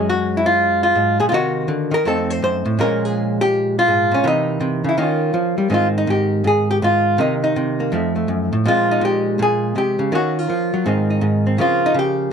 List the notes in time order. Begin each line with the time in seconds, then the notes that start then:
Already playing: F#2 F#3 G#3 C#4
0.09 F#4
0.37 E4
0.46 F4
0.83 F4
0.95 G#2
1.20 A#2 G#4
1.29 C3 D#3 F4
1.33 A#3 D#4 F#4
1.68 D3
1.91 D#3 A#4
2.05 F2 A3 C4 D#4 A4
2.30 C5
2.42 F#2 C5
2.65 A2
2.79 A#2 F3 G#3 C#4 A#4
3.05 G#4
3.41 G4
3.79 F4
3.88 G#2
4.11 A#2 C#4
4.24 C3 E3 A#3 D#4
4.61 C3
4.84 C#3
4.89 E4
4.98 D#3 A#3 C#4
5.02 F4
5.34 F3
5.58 G3
5.70 G#2 D#3 C4 D#4
5.74 F4
5.98 D#4
6.07 G#2 G4
6.44 G#2 G#4
6.71 G4
6.82 G#2 F4
7.18 C3 D#3 A#3 D#4
7.44 D#4
7.56 C3
7.80 A#3
7.92 F2 F3 A3
8.16 A3
8.28 F#2
8.53 A2
8.66 A#2 F3 G#3 C4 F4
8.91 D#4
9.01 A#2 G4
9.39 A#2 G#4
9.76 C3 G4
9.99 C#3
10.12 D#3 A#3 C#4 F#4
10.39 F4
10.50 F3
10.74 F#3
10.86 G#2 D#3 C4 D#4
11.10 D#4
11.21 G#2
11.47 C4
11.58 C#3 F3 A#3 C4 F4
11.86 D#4
11.94 C#3
11.99 G4